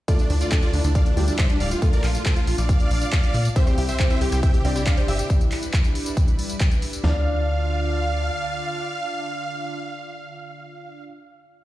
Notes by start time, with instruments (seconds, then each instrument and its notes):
0.08 analog synth pad D3 A3 E4 F4, felt piano A3 A4, supersaw synth F4 D5, kick, closed hi-hat, tambourine
0.19 supersaw synth D4, closed hi-hat, tambourine
0.30 analog synth bass D2, supersaw synth D4, open hi-hat
0.41 supersaw synth F4 D5, closed hi-hat, tambourine
0.52 felt piano A3 A4, supersaw synth D4, kick, clap, closed hi-hat, tambourine
0.63 supersaw synth F4 D5, closed hi-hat, tambourine
0.73 analog synth bass D2, supersaw synth D4, open hi-hat
0.84 analog synth bass D2, supersaw synth D4, closed hi-hat, tambourine
0.95 supersaw synth D5 F5, kick, closed hi-hat, tambourine
1.06 supersaw synth D4, closed hi-hat, tambourine
1.17 analog synth bass D2, felt piano G3 G4, supersaw synth D4, open hi-hat
1.28 supersaw synth D4, closed hi-hat, tambourine
1.39 supersaw synth C5 E5, kick, clap, closed hi-hat, tambourine
1.49 supersaw synth D4, closed hi-hat, tambourine
1.60 analog synth bass D1, supersaw synth D5 F5, open hi-hat
1.71 supersaw synth F4, closed hi-hat, tambourine
1.82 felt piano A3 A4, analog synth pad D4, supersaw synth F4, kick, closed hi-hat, tambourine
1.93 supersaw synth A#4 D5, closed hi-hat, tambourine
2.04 analog synth bass A#1, supersaw synth F4, clap, open hi-hat
2.15 supersaw synth F4, closed hi-hat, tambourine
2.25 supersaw synth A4 C5, kick, clap, closed hi-hat, tambourine
2.36 supersaw synth F4, closed hi-hat, tambourine
2.47 analog synth bass A#1, supersaw synth F4, open hi-hat
2.58 analog synth bass A#1, supersaw synth D5 F5, closed hi-hat, tambourine
2.69 kick, closed hi-hat, tambourine
2.80 closed hi-hat, tambourine
2.91 analog synth bass A#1, open hi-hat
3.02 closed hi-hat, tambourine
3.12 kick, clap, closed hi-hat, tambourine
3.23 closed hi-hat, tambourine
3.34 analog synth bass A#2, open hi-hat
3.45 tambourine
3.56 analog synth pad C3 C4 E4 G4, felt piano C4 C5, synth arpeggio sound G4, supersaw synth C5 E5, kick, closed hi-hat, tambourine
3.67 supersaw synth G4, synth arpeggio sound C5, closed hi-hat, tambourine
3.78 analog synth bass C2, supersaw synth G4, synth arpeggio sound E5, open hi-hat
3.89 supersaw synth C5 E5, closed hi-hat, tambourine
3.99 synth arpeggio sound C4, felt piano C4 C5, supersaw synth G4, kick, clap, closed hi-hat, tambourine
4.10 synth arpeggio sound E4, supersaw synth C5 E5, closed hi-hat, tambourine
4.21 analog synth bass C2, synth arpeggio sound G4, supersaw synth G4, open hi-hat
4.32 analog synth bass C2, supersaw synth G4, synth arpeggio sound C5, closed hi-hat, tambourine
4.43 synth arpeggio sound E5, supersaw synth E5 G5, kick, closed hi-hat, tambourine
4.54 supersaw synth G4, closed hi-hat, tambourine
4.65 analog synth bass C2, synth arpeggio sound C4, felt piano D4 D5, supersaw synth G4, open hi-hat
4.76 synth arpeggio sound E4, supersaw synth G4, closed hi-hat, tambourine
4.86 synth arpeggio sound G4, supersaw synth D5 F5, kick, clap, closed hi-hat, tambourine
4.97 supersaw synth G4, synth arpeggio sound C5, closed hi-hat, tambourine
5.08 analog synth bass G1, supersaw synth G4 E5, synth arpeggio sound E5, open hi-hat
5.19 supersaw synth G4, closed hi-hat, tambourine
5.30 analog synth pad G3 D4 B4, kick, closed hi-hat, tambourine
5.41 closed hi-hat, tambourine
5.52 clap, open hi-hat
5.63 closed hi-hat, tambourine
5.73 kick, clap, closed hi-hat, tambourine
5.84 closed hi-hat, tambourine
5.95 open hi-hat
6.06 closed hi-hat, tambourine
6.17 kick, closed hi-hat, tambourine
6.28 closed hi-hat, tambourine
6.39 open hi-hat
6.50 closed hi-hat, tambourine
6.60 kick, clap, closed hi-hat, tambourine
6.71 closed hi-hat, tambourine
6.82 open hi-hat
6.93 closed hi-hat, tambourine
7.04 analog synth bass D2, analog synth pad D3 D4 F4 F5, synth arpeggio sound D4, felt piano D5, supersaw synth F5, snare, floor tom